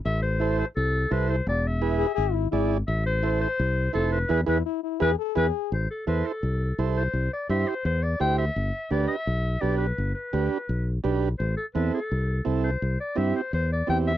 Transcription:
X:1
M:4/4
L:1/16
Q:1/4=169
K:Am
V:1 name="Clarinet"
e2 c4 c2 A4 B2 c2 | d2 e8 z6 | e2 c4 c6 A2 B2 | B2 B2 z4 B2 z2 B2 z2 |
c2 A2 B2 A6 z2 c2- | c2 d2 e2 c2 c2 d2 g2 e2- | e4 d2 e6 d2 B2- | B2 B8- B z4 z |
c2 A2 B2 A6 z2 c2- | c2 d2 e2 c2 c2 d2 g2 e2 |]
V:2 name="Transistor combo organ"
z4 [EAc]2 z6 [EAc]2 z2 | z4 [E^GB]2 z6 [EGd]2 z2 | z4 [EAc]2 z6 [EAc]2 z2 | [E^GB]2 [EGB]2 z4 [EGB]2 z2 [EGB]2 z2 |
z4 [EAc]2 z6 [EAc]2 z2 | z4 [EGc]2 z6 [EGc]2 z2 | z4 [DGB]2 z6 [DGB]2 z2 | z4 [DGB]2 z6 [DGB]2 z2 |
z4 [CEA]2 z6 [CEA]2 z2 | z4 [CEG]2 z6 [CEG]2 z2 |]
V:3 name="Trombone"
z16 | z6 ^G2 G2 E2 E3 z | z16 | z2 E2 E2 E2 ^G2 A2 G4 |
z16 | z16 | z16 | z16 |
z16 | z16 |]
V:4 name="Fingered electric bass" clef=bass
A,,,8 C,,4 C,,4 | E,,,8 ^G,,,4 G,,,4 | A,,,8 C,,4 F,,,4 | E,,2 E,,2 z4 E,,2 z2 E,,2 z2 |
A,,,2 z2 E,,2 z2 C,,4 C,,4 | C,,2 z2 G,,2 z2 E,,4 D,,4 | G,,,2 z2 D,,2 z2 B,,,4 B,,,4 | G,,,2 z2 D,,2 z2 B,,,4 B,,,4 |
A,,,2 z2 E,,2 z2 C,,4 C,,4 | C,,2 z2 G,,2 z2 E,,4 E,,4 |]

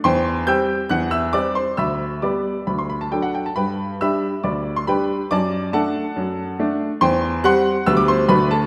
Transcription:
X:1
M:4/4
L:1/16
Q:1/4=138
K:G
V:1 name="Grand piano"
[cgc']4 [ge'g']4 [ff']2 [ee']2 [dd']2 [cc']2 | [ebe']4 [dbd']4 b c' b a g f g a | [Bgb]4 [ebe']4 [dbd']3 c' [Bgb]4 | [dad']4 [Afa]8- [Afa]2 z2 |
[cgc']4 [fc'f']4 e' d' [cc']2 [Bb]2 [Aa]2 |]
V:2 name="Grand piano"
E,,4 [G,CG]4 E,,4 [G,CG]4 | D,,4 [G,B,G]4 D,,4 [F,DA]4 | G,,4 [G,DG]4 D,,4 [G,DG]4 | F,,4 [A,D]4 F,,4 [A,D]4 |
E,,4 [G,CG]4 [D,,G,B,G]4 [D,,A,DF]4 |]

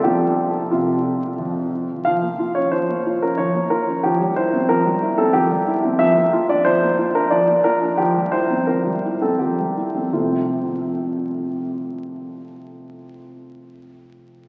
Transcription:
X:1
M:3/4
L:1/16
Q:1/4=89
K:F
V:1 name="Grand piano"
G4 F4 z4 | f3 _d c3 B d2 B2 | G2 c2 B3 A G4 | e3 d c3 B d2 B2 |
G2 c2 B3 A G4 | [F,,C,A,CF]12- | [F,,C,A,CF]12 |]
V:2 name="Grand piano"
[F,CF]4 C,4 F,,4 | F, B, F _D F, B, F D F, B, F D | F, G, E C F, G, E C F, G, E C | F, B, F D F, B, F D F, B, F D |
F, G, E C F, G, E C F, G, E C | z12 | z12 |]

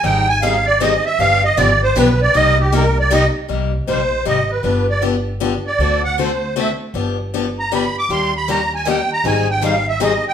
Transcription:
X:1
M:3/4
L:1/16
Q:"Swing" 1/4=156
K:Cm
V:1 name="Accordion"
g2 a2 f2 d2 e2 =e2 | f2 e2 d2 c2 =B2 d2 | e2 G2 B2 d2 e2 z2 | z4 c4 e2 =B2- |
=B2 d2 z6 d2- | d2 ^f2 c4 =e2 z2 | z6 b2 =b2 d'2 | c'2 =b2 _b2 a2 g2 b2 |
a2 g2 f2 =e2 _e2 g2 |]
V:2 name="Steel-string acoustic guitar"
[E,G,CEA]2 z2 [E,G,CEA] z3 [E,G,CEA] z3 | [D,F,=B,DG]2 z2 [D,F,B,DG] z3 [D,F,B,DG] z3 | [C,G,B,EG]2 z2 [C,G,B,EG] z3 [C,G,B,EG] z3 | [C,G,B,EG]2 z2 [C,G,B,EG] z3 [C,G,B,EG] z3 |
[D,F,=B,DG]2 z2 [D,F,B,DG] z3 [D,F,B,DG] z3 | [D,=A,C^F=A]2 z2 [D,A,CFA] z3 [D,A,CFA] z3 | [D,F,=B,DG]2 z2 [D,F,B,DG] z3 [D,F,B,DG] z3 | [E,G,B,DG]2 z2 [E,G,B,DG] z3 [E,G,B,DG] z3 |
[E,G,CEA]2 z2 [E,G,CEA] z3 [E,G,CEA] z3 |]
V:3 name="Steel-string acoustic guitar"
[E,G,CEA]2 z2 [E,G,CEA] z3 [E,G,CEA] z3 | [D,F,=B,DG]2 z2 [D,F,B,DG] z3 [D,F,B,DG] z3 | [C,G,B,EG]2 z2 [C,G,B,EG] z3 [C,G,B,EG] z3 | z12 |
z12 | z12 | z12 | [E,G,B,DG]2 z2 [E,G,B,DG] z3 [E,G,B,DG] z3 |
[E,G,CEA]2 z2 [E,G,CEA] z3 [E,G,CEA] z3 |]
V:4 name="Upright bass" clef=bass
A,,,12 | G,,,4 A,,,4 =B,,,4 | C,,12 | C,,4 B,,,4 A,,,4 |
G,,,12 | D,,12 | G,,,12 | E,,12 |
A,,,12 |]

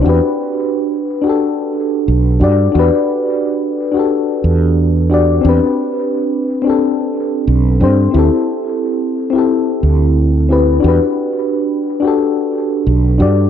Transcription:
X:1
M:4/4
L:1/16
Q:"Swing 16ths" 1/4=89
K:Em
V:1 name="FM electric piano"
[DFGB]6- [DFGB] [DFGA]4- [DFGA] z2 [DFGd]2 | [DFGB]6- [DFGB] [DFGA]4- [DFGA] z2 [DFGd]2 | [CDGB]6- [CDGB] [CDGA]4- [CDGA] z2 [CDGc]2 | [CEGA]6- [CEGA] [CEGA]4- [CEGA] z2 [CEGB]2 |
[DFGB]6- [DFGB] [DFGA]4- [DFGA] z2 [DFGd]2 |]
V:2 name="Fretless electric bass" clef=bass
E,,2 z8 z2 B,,,2 G,,2 | E,,2 z8 E,,6 | E,,2 z8 z2 B,,,2 G,,2 | D,,2 z8 D,,6 |
E,,2 z8 z2 B,,,2 G,,2 |]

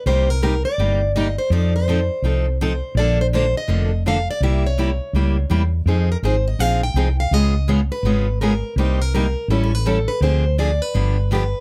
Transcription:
X:1
M:4/4
L:1/16
Q:"Swing" 1/4=165
K:Cm
V:1 name="Steel-string acoustic guitar"
c2 B2 B2 d6 e2 c2 | d2 c8- c2 c4 | d2 c2 c2 e6 f2 d2 | =e2 _d12 z2 |
z2 B2 c2 e2 f2 g4 f2 | e4 z2 _c6 B4 | c2 B2 B4 (3=A2 ^c2 =B2 A2 B2 | c4 d2 =B6 B4 |]
V:2 name="Steel-string acoustic guitar"
[C,G,B,EG]2 z2 [C,G,B,EG] z3 [C,G,B,EG]2 z2 [C,G,B,EG] z3 | [F,CE=A]2 z2 [F,CEA] z3 [F,CEA]2 z2 [F,CEA] z3 | [D,F,B,D=A]2 z2 [D,F,B,DA] z3 [D,F,B,DA]2 z2 [D,F,B,DA] z3 | [C,G,B,=EG]2 z2 [C,G,B,EG] z3 [C,G,B,EG]2 z2 [C,G,B,EG] z3 |
[F,CEA]2 z2 [F,CEA] z3 [F,CEA]2 z2 [F,CEA] z3 | [_D,A,_CFA]2 z2 [D,A,CFA] z3 [D,A,CFA]2 z2 [D,A,CFA] z3 | [C,G,B,EG]2 z2 [C,G,B,EG] z3 [=E,G,^C=E=A]2 z2 [E,G,CEA] z3 | [D,F,CDA]2 z2 [D,F,CDA] z3 [D,F,=B,DG]2 z2 [D,F,B,DG] z3 |]
V:3 name="Fretless electric bass" clef=bass
C,,8 G,,,8 | F,,8 C,,8 | B,,,8 F,,,8 | C,,8 _D,,4 =E,,4 |
F,,4 A,,,4 B,,,4 C,,4 | _D,,8 A,,,8 | C,,8 =A,,,8 | D,,8 G,,,8 |]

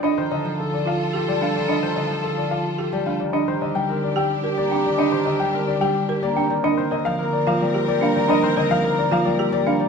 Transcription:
X:1
M:3/4
L:1/16
Q:1/4=109
K:Eblyd
V:1 name="Grand piano"
e c e z A d f z G d f d | e c e z A d f z G d f d | e c e g B d g z G d g d | e c e g B d g z G d g d |
e c e f B d f d G d f d | e c e f B d f d G d f d |]
V:2 name="Clarinet"
A12- | A8- A3 z | G12- | G8- G3 z |
B12- | B8- B3 z |]
V:3 name="String section"
[FA]12- | [FA]8- [FA]3 z | [DG]12- | [DG]8- [DG]3 z |
[CB]12- | [CB]8- [CB]3 z |]
V:4 name="Marimba"
D z4 z F z G z D z | D z4 z F z G z D z | D z4 z G z B z D z | D z4 z G z B z D z |
D z B z3 F z G z D z | D z B z3 F z G z D z |]
V:5 name="Harp" clef=bass
[F,G,A,C] E, D, F,6 G, A, E,- | E, E, D, F,6 G, A, E, | z E, D, G, C2 G,3 B, C E,- | E, E, D, G, C2 G,3 B, C E, |
z E, D, F, B,2 F, G,2 G, B, E,- | E, E, D, F, B,2 F, G,2 G, B, E, |]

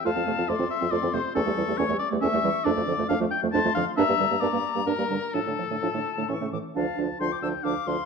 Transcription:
X:1
M:3/4
L:1/16
Q:1/4=136
K:F
V:1 name="Flute"
a4 c'8 | [K:Dm] ^c'8 c'4 | d'6 z2 c'4 | b12 |
a4 a4 ^c'2 d'2 | f4 c' d' e'2 d'2 c'2 |]
V:2 name="Oboe"
f4 d2 e2 d2 c2 | [K:Dm] A4 ^c2 d2 e4 | d4 f2 g2 a2 f2 | e4 d4 B4 |
A8- A2 z2 | a4 g4 f4 |]
V:3 name="Clarinet"
F C A, C F C z C F C A, z | [K:Dm] ^C A, G, A, C A, z A, C A, G, z | D A, F, A, D A, z A, D A, F, z | D B, G, B, D B, z B, D B, G, z |
D A, F, A, D A, z A, ^C A, E, z | D2 D2 D2 D2 D2 D2 |]
V:4 name="French horn" clef=bass
A, F, C, F, A, F, z F, A, F, C, z | [K:Dm] A, G, E, G, A, G, z G, A, G, E, z | A, F, D, F, A, F, z F, A, F, D, z | B, G, D, G, B, G, z G, B, G, D, z |
F, D, A,, D, F, D, z D, E, ^C, A,, z | F,2 F,2 F,2 F,2 F,2 F,2 |]
V:5 name="Bassoon" clef=bass
F,, F,, F,, F,, F,, F,, z F,, F,, F,, F,, z | [K:Dm] E,, E,, E,, E,, E,, E,, z E,, E,, E,, E,, z | F,, F,, F,, F,, F,, F,, z F,, F,, F,, F,, z | G,, G,, G,, G,, G,, G,, z G,, G,, G,, G,, z |
A,, A,, A,, A,, A,, A,, z A,, A,, A,, A,, z | D,,2 D,,2 D,,2 D,,2 D,,2 D,,2 |]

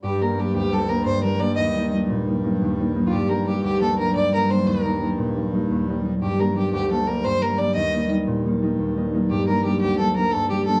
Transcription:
X:1
M:9/8
L:1/16
Q:3/8=117
K:Gm
V:1 name="Fiddle"
G2 B2 G2 G2 A2 B2 c2 B2 d2 | e4- e/2 z12 z F/2 | G2 B2 G2 G2 A2 B2 d2 B2 c2 | B4- B/2 z12 z3/2 |
G2 B2 G2 G2 A2 B2 c2 B2 d2 | e4- e/2 z12 z3/2 | G2 B2 G2 G2 A2 B2 A2 G2 A2 |]
V:2 name="Harp"
G,,2 [G,B,D]2 [G,B,D]2 D,,2 [G,B,D]2 [G,B,D]2 G,,2 [G,B,D]2 [G,B,D]2 | E,,2 [G,B,E]2 [G,B,E]2 B,,2 [G,B,E]2 [G,B,E]2 E,,2 [G,B,E]2 [G,B,E]2 | G,,2 [G,B,D]2 [G,B,D]2 D,,2 [G,B,D]2 [G,B,D]2 G,,2 [G,B,D]2 [G,B,D]2 | E,,2 [G,B,E]2 [G,B,E]2 B,,2 [G,B,E]2 [G,B,E]2 E,,2 [G,B,E]2 [G,B,E]2 |
G,,2 [G,B,D]2 [G,B,D]2 D,,2 [G,B,D]2 [G,B,D]2 G,,2 [G,B,D]2 [G,B,D]2 | E,,2 [G,B,E]2 [G,B,E]2 B,,2 [G,B,E]2 [G,B,E]2 E,,2 [G,B,E]2 [G,B,E]2 | G,,2 [G,B,D]2 [G,B,D]2 D,,2 [G,B,D]2 [G,B,D]2 G,,2 [G,B,D]2 [G,B,D]2 |]
V:3 name="Accordion" clef=bass
[G,,G,]16- [G,,G,]2- | [G,,G,]16- [G,,G,]2- | [G,,G,]16- [G,,G,]2- | [G,,G,]16- [G,,G,]2 |
[G,,G,]16- [G,,G,]2- | [G,,G,]16- [G,,G,]2- | [G,,G,]16- [G,,G,]2 |]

